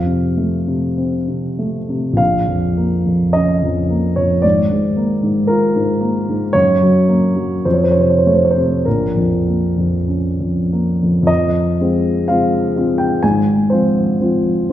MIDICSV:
0, 0, Header, 1, 2, 480
1, 0, Start_track
1, 0, Key_signature, -5, "minor"
1, 0, Tempo, 1219512
1, 863, Time_signature, 4, 2, 24, 8
1, 863, Tempo, 1153846
1, 1343, Tempo, 1092896
1, 1823, Tempo, 1050788
1, 2783, Tempo, 1111111
1, 3263, Tempo, 1212121
1, 4703, Key_signature, -4, "minor"
1, 4703, Tempo, 998336
1, 5183, Tempo, 960000
1, 6402, End_track
2, 0, Start_track
2, 0, Title_t, "Grand piano"
2, 0, Program_c, 0, 0
2, 0, Control_c, 0, 64, 127
2, 0, Note_on_c, 0, 41, 36
2, 0, Note_on_c, 0, 77, 53
2, 23, Note_on_c, 0, 48, 26
2, 147, Note_on_c, 0, 57, 27
2, 218, Note_off_c, 0, 48, 0
2, 265, Note_on_c, 0, 48, 26
2, 340, Note_off_c, 0, 57, 0
2, 385, Note_on_c, 0, 60, 26
2, 457, Note_off_c, 0, 48, 0
2, 504, Note_on_c, 0, 48, 26
2, 577, Note_off_c, 0, 60, 0
2, 622, Note_off_c, 0, 77, 0
2, 625, Note_on_c, 0, 57, 28
2, 698, Note_off_c, 0, 48, 0
2, 744, Note_on_c, 0, 48, 26
2, 816, Note_off_c, 0, 57, 0
2, 838, Note_on_c, 0, 34, 36
2, 846, Note_off_c, 0, 41, 0
2, 854, Note_on_c, 0, 77, 67
2, 862, Note_off_c, 0, 48, 0
2, 870, Control_c, 0, 64, 0
2, 931, Control_c, 0, 64, 127
2, 982, Note_on_c, 0, 41, 27
2, 1104, Note_on_c, 0, 58, 30
2, 1176, Note_off_c, 0, 41, 0
2, 1224, Note_on_c, 0, 41, 27
2, 1295, Note_off_c, 0, 58, 0
2, 1336, Note_on_c, 0, 75, 59
2, 1338, Note_off_c, 0, 77, 0
2, 1345, Note_on_c, 0, 61, 33
2, 1416, Note_off_c, 0, 41, 0
2, 1466, Note_on_c, 0, 41, 28
2, 1539, Note_off_c, 0, 61, 0
2, 1586, Note_on_c, 0, 58, 31
2, 1658, Note_off_c, 0, 41, 0
2, 1700, Note_on_c, 0, 73, 53
2, 1702, Note_off_c, 0, 75, 0
2, 1707, Note_on_c, 0, 41, 29
2, 1776, Note_off_c, 0, 58, 0
2, 1791, Note_off_c, 0, 34, 0
2, 1814, Note_on_c, 0, 74, 61
2, 1820, Note_off_c, 0, 73, 0
2, 1824, Note_off_c, 0, 41, 0
2, 1824, Note_on_c, 0, 32, 38
2, 1831, Control_c, 0, 64, 0
2, 1895, Control_c, 0, 64, 127
2, 1948, Note_on_c, 0, 44, 30
2, 2063, Note_on_c, 0, 58, 31
2, 2138, Note_off_c, 0, 44, 0
2, 2184, Note_on_c, 0, 44, 30
2, 2255, Note_off_c, 0, 58, 0
2, 2296, Note_on_c, 0, 70, 59
2, 2299, Note_off_c, 0, 74, 0
2, 2303, Note_on_c, 0, 65, 31
2, 2375, Note_off_c, 0, 44, 0
2, 2426, Note_on_c, 0, 44, 33
2, 2494, Note_off_c, 0, 65, 0
2, 2540, Note_on_c, 0, 58, 36
2, 2615, Note_off_c, 0, 44, 0
2, 2669, Note_on_c, 0, 44, 33
2, 2733, Note_off_c, 0, 58, 0
2, 2765, Note_off_c, 0, 32, 0
2, 2777, Note_on_c, 0, 73, 79
2, 2779, Note_off_c, 0, 70, 0
2, 2785, Note_on_c, 0, 42, 44
2, 2786, Note_off_c, 0, 44, 0
2, 2790, Control_c, 0, 64, 0
2, 2863, Control_c, 0, 64, 127
2, 2904, Note_on_c, 0, 54, 34
2, 3018, Note_on_c, 0, 58, 34
2, 3093, Note_off_c, 0, 54, 0
2, 3139, Note_on_c, 0, 54, 31
2, 3213, Note_off_c, 0, 58, 0
2, 3250, Note_off_c, 0, 42, 0
2, 3261, Note_off_c, 0, 73, 0
2, 3263, Note_off_c, 0, 54, 0
2, 3263, Note_on_c, 0, 72, 48
2, 3264, Note_on_c, 0, 41, 42
2, 3270, Control_c, 0, 64, 0
2, 3295, Note_on_c, 0, 73, 48
2, 3297, Note_off_c, 0, 72, 0
2, 3329, Note_off_c, 0, 73, 0
2, 3330, Control_c, 0, 64, 127
2, 3336, Note_on_c, 0, 72, 50
2, 3366, Note_on_c, 0, 73, 50
2, 3367, Note_off_c, 0, 72, 0
2, 3389, Note_on_c, 0, 48, 30
2, 3399, Note_off_c, 0, 73, 0
2, 3403, Note_on_c, 0, 72, 44
2, 3435, Note_off_c, 0, 72, 0
2, 3442, Note_on_c, 0, 73, 42
2, 3471, Note_off_c, 0, 73, 0
2, 3474, Note_on_c, 0, 72, 44
2, 3505, Note_off_c, 0, 72, 0
2, 3506, Note_on_c, 0, 57, 32
2, 3507, Note_on_c, 0, 73, 41
2, 3539, Note_off_c, 0, 73, 0
2, 3539, Note_on_c, 0, 72, 42
2, 3572, Note_off_c, 0, 72, 0
2, 3574, Note_off_c, 0, 48, 0
2, 3578, Note_on_c, 0, 73, 43
2, 3602, Note_on_c, 0, 72, 52
2, 3609, Note_off_c, 0, 73, 0
2, 3623, Note_on_c, 0, 48, 28
2, 3695, Note_off_c, 0, 57, 0
2, 3726, Note_off_c, 0, 41, 0
2, 3738, Note_off_c, 0, 72, 0
2, 3738, Note_on_c, 0, 70, 49
2, 3742, Note_off_c, 0, 48, 0
2, 3747, Note_on_c, 0, 34, 35
2, 3748, Control_c, 0, 64, 0
2, 3814, Control_c, 0, 64, 127
2, 3864, Note_on_c, 0, 41, 28
2, 3984, Note_on_c, 0, 58, 26
2, 4056, Note_off_c, 0, 41, 0
2, 4106, Note_on_c, 0, 41, 27
2, 4176, Note_off_c, 0, 58, 0
2, 4225, Note_on_c, 0, 61, 25
2, 4298, Note_off_c, 0, 41, 0
2, 4351, Note_on_c, 0, 41, 25
2, 4423, Note_off_c, 0, 61, 0
2, 4472, Note_off_c, 0, 70, 0
2, 4480, Note_on_c, 0, 58, 29
2, 4550, Note_off_c, 0, 41, 0
2, 4599, Note_on_c, 0, 41, 27
2, 4664, Note_off_c, 0, 58, 0
2, 4674, Note_off_c, 0, 41, 0
2, 4679, Note_on_c, 0, 41, 41
2, 4690, Note_off_c, 0, 34, 0
2, 4696, Note_on_c, 0, 75, 66
2, 4711, Control_c, 0, 64, 0
2, 4790, Control_c, 0, 64, 127
2, 4926, Note_off_c, 0, 41, 0
2, 4953, Note_on_c, 0, 56, 30
2, 4956, Note_on_c, 0, 60, 30
2, 4960, Note_on_c, 0, 65, 34
2, 5167, Note_off_c, 0, 56, 0
2, 5168, Note_off_c, 0, 60, 0
2, 5170, Note_off_c, 0, 65, 0
2, 5178, Note_off_c, 0, 75, 0
2, 5179, Note_on_c, 0, 77, 58
2, 5190, Note_on_c, 0, 56, 32
2, 5190, Note_on_c, 0, 60, 32
2, 5193, Note_on_c, 0, 65, 35
2, 5404, Note_off_c, 0, 56, 0
2, 5404, Note_off_c, 0, 60, 0
2, 5405, Note_off_c, 0, 65, 0
2, 5421, Note_on_c, 0, 56, 33
2, 5424, Note_on_c, 0, 60, 32
2, 5426, Note_on_c, 0, 65, 36
2, 5530, Note_on_c, 0, 79, 56
2, 5535, Note_off_c, 0, 77, 0
2, 5634, Note_off_c, 0, 56, 0
2, 5636, Note_off_c, 0, 60, 0
2, 5637, Note_off_c, 0, 65, 0
2, 5650, Note_off_c, 0, 79, 0
2, 5653, Note_on_c, 0, 80, 67
2, 5659, Note_on_c, 0, 32, 43
2, 5660, Control_c, 0, 64, 0
2, 5739, Control_c, 0, 64, 127
2, 5887, Note_off_c, 0, 32, 0
2, 5889, Note_on_c, 0, 72, 50
2, 5891, Note_off_c, 0, 80, 0
2, 5900, Note_on_c, 0, 60, 31
2, 5901, Note_on_c, 0, 53, 28
2, 5901, Note_on_c, 0, 65, 33
2, 6121, Note_off_c, 0, 53, 0
2, 6121, Note_off_c, 0, 60, 0
2, 6121, Note_off_c, 0, 65, 0
2, 6144, Note_on_c, 0, 53, 30
2, 6144, Note_on_c, 0, 60, 30
2, 6149, Note_on_c, 0, 65, 31
2, 6366, Note_off_c, 0, 53, 0
2, 6366, Note_off_c, 0, 60, 0
2, 6369, Note_off_c, 0, 65, 0
2, 6381, Note_off_c, 0, 72, 0
2, 6402, End_track
0, 0, End_of_file